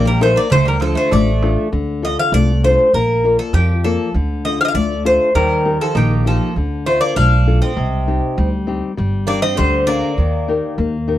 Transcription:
0.00 0.34 A#1 medium
0.00 0.49 A#3 medium
0.05 0.20 G3 medium
0.05 0.21 A#4 medium
0.21 0.35 A3 medium
0.21 0.45 D#4 soft
0.21 0.45 G4 soft
0.21 0.46 A#4 medium
0.21 0.37 C5 medium
0.21 darbuka tek medium
0.36 0.49 A#3 medium
0.36 0.51 D5 medium
0.50 0.94 D2 medium
0.50 1.10 D3 medium
0.50 0.64 A3 medium
0.50 0.66 C5 loud
0.50 darbuka dum medium
0.65 0.79 G3 medium
0.65 0.81 A#4 medium
0.80 0.94 F3 medium
0.80 1.30 D4 soft
0.80 1.30 F4 soft
0.80 0.96 A4 medium
0.80 1.30 A4 medium
0.80 darbuka tek medium
0.95 1.10 A3 medium
0.95 1.11 C5 medium
1.11 1.54 A1 loud
1.11 1.68 A3 medium
1.11 1.70 A3 medium
1.11 1.68 D5 medium
1.11 darbuka tek medium
1.27 darbuka tek soft
1.43 1.67 D4 soft
1.43 1.67 F4 soft
1.43 1.67 A4 medium
1.43 darbuka tek medium
1.57 darbuka tek soft
1.72 2.14 D2 medium
1.72 2.31 D3 medium
2.02 2.51 D4 soft
2.02 2.51 F4 soft
2.02 2.51 A4 soft
2.02 2.17 D#5 medium
2.19 2.32 F5 loud
2.32 2.74 C2 medium
2.32 2.92 A3 medium
2.32 2.61 D5 medium
2.63 2.87 D4 soft
2.63 2.88 F4 soft
2.63 2.87 A4 soft
2.63 2.92 C5 medium
2.93 3.35 A#1 medium
2.93 3.52 A#3 medium
2.93 3.39 A#4 medium
3.24 3.72 F4 soft
3.24 3.72 A#4 soft
3.24 3.73 D5 medium
3.39 3.53 A4 medium
3.53 3.95 F2 loud
3.53 4.13 F3 medium
3.53 3.85 G4 medium
3.84 4.08 A#3 soft
3.84 4.08 F4 soft
3.84 4.12 A4 medium
3.84 4.08 D5 soft
4.14 4.56 D2 medium
4.14 4.73 D3 medium
4.45 4.93 D4 soft
4.45 4.93 F4 soft
4.45 4.93 A4 medium
4.45 4.58 D#5 medium
4.61 4.64 F5 medium
4.65 4.67 D#5 medium
4.65 4.74 F5 medium
4.74 5.16 D2 medium
4.74 5.33 A3 medium
4.74 5.02 D5 loud
5.05 5.29 D4 soft
5.05 5.29 F4 soft
5.05 5.29 A4 medium
5.05 5.33 C5 medium
5.35 5.77 D#2 medium
5.35 5.93 D#3 medium
5.35 5.77 G3 medium
5.35 5.77 A#4 medium
5.65 6.13 D#4 soft
5.65 6.14 G4 soft
5.65 6.14 A#4 soft
5.81 5.94 F3 medium
5.81 5.96 A4 medium
5.95 6.37 A#1 medium
5.95 6.23 D#3 medium
5.95 6.54 A#3 medium
5.95 6.24 G4 medium
6.25 6.54 F3 medium
6.25 6.49 D#4 soft
6.25 6.50 G4 soft
6.25 6.54 A4 medium
6.56 6.98 D2 medium
6.56 7.15 D3 medium
6.86 7.00 A3 medium
6.86 7.35 D4 soft
6.86 7.35 F4 soft
6.86 7.35 A4 soft
6.86 7.00 C5 medium
7.01 7.15 A#3 medium
7.01 7.15 D5 medium
7.16 7.58 B1 medium
7.16 7.75 A3 medium
7.16 7.58 D4 medium
7.16 7.61 F5 medium
7.47 7.70 D4 soft
7.47 7.71 F4 soft
7.47 7.71 A4 medium
7.62 8.48 C4 medium
7.62 8.48 D#5 medium
7.76 8.18 C2 medium
7.76 8.35 C3 medium
8.07 8.55 C4 soft
8.07 8.55 D#4 soft
8.07 8.56 G4 soft
8.38 8.79 D2 medium
8.38 8.95 G3 medium
8.67 8.91 C4 soft
8.67 8.91 D#4 soft
8.67 8.91 G4 medium
8.97 9.40 G1 medium
8.97 9.55 G3 medium
9.27 9.41 A#3 medium
9.27 9.75 D4 soft
9.27 9.75 G4 soft
9.27 9.41 D5 medium
9.27 9.76 D5 medium
9.42 9.56 C4 medium
9.42 9.57 D#5 medium
9.57 10.00 D2 medium
9.57 10.16 D3 medium
9.57 9.85 G3 medium
9.57 9.85 C5 medium
9.87 10.73 A#3 medium
9.87 10.11 D4 soft
9.87 10.12 G4 soft
9.87 10.73 D5 medium
9.87 10.12 D5 soft
10.18 10.60 D#2 medium
10.18 10.76 D#3 medium
10.48 10.96 D#4 soft
10.48 10.96 G4 soft
10.48 10.97 A#4 soft
10.78 11.18 D#2 medium
10.78 11.18 A#3 medium
11.08 11.18 D#4 soft
11.08 11.18 G4 soft
11.08 11.18 A#4 soft

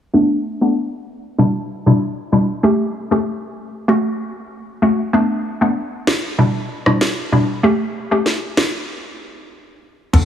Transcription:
0.13 0.57 A3 medium
0.13 0.58 B3 medium
0.13 0.58 D4 loud
0.61 0.75 A3 medium
0.61 0.75 B3 medium
0.61 0.75 D4 medium
1.38 1.53 B2 medium
1.38 1.54 G3 medium
1.38 1.54 D4 medium
1.38 1.54 E4 loud
1.86 2.00 B2 medium
1.86 2.00 G3 medium
1.86 2.00 D4 medium
1.86 2.00 E4 medium
2.32 2.47 B2 medium
2.32 2.47 G3 medium
2.32 2.47 D4 medium
2.32 2.47 E4 medium
2.63 3.07 A3 medium
2.63 3.07 C#4 medium
2.63 3.08 G4 loud
3.11 3.24 A3 medium
3.11 3.25 C#4 medium
3.11 3.25 G4 medium
3.88 4.75 A3 medium
3.88 4.75 C#4 medium
3.88 4.75 F#4 loud
4.82 5.11 A3 medium
4.82 5.11 C#4 medium
4.82 5.11 F#4 medium
5.13 5.57 A3 medium
5.13 5.57 B3 medium
5.13 5.58 D4 loud
5.61 5.75 A3 medium
5.61 5.75 B3 medium
5.61 5.75 D4 medium
6.07 snare loud
6.38 6.53 B2 medium
6.38 6.54 G3 medium
6.38 6.54 D4 medium
6.38 6.54 E4 loud
6.86 7.00 B2 medium
6.86 7.00 G3 medium
6.86 7.00 D4 medium
6.86 7.00 E4 medium
6.86 cross-stick medium
7.01 snare loud
7.32 7.47 B2 medium
7.32 7.47 G3 medium
7.32 7.47 D4 medium
7.32 7.47 E4 medium
7.63 8.07 A3 medium
7.63 8.07 C#4 medium
7.63 8.08 G4 loud
8.11 8.25 A3 medium
8.11 8.25 C#4 medium
8.11 8.25 G4 medium
8.26 snare medium
8.57 snare loud
10.13 10.25 B1 loud
10.13 10.25 B3 medium
10.13 10.25 D4 medium
10.13 10.25 A4 loud
10.13 kick loud
10.13 closed hi-hat medium
10.13 crash medium

